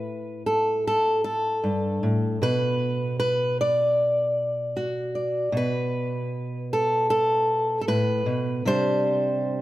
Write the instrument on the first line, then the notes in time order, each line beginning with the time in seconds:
steel-string acoustic guitar
Already playing: A2 B4
0.46 A4
0.87 A4
1.24 A4
1.64 G2
2.03 A2
2.42 B2 B4
3.20 B4
3.61 D5
4.77 F#4
5.15 D5
5.52 B2
5.57 B4
6.73 A4
7.10 A4
7.81 A4
7.88 A2 B4
8.26 B2
8.65 C3 G3 D4 G4 C5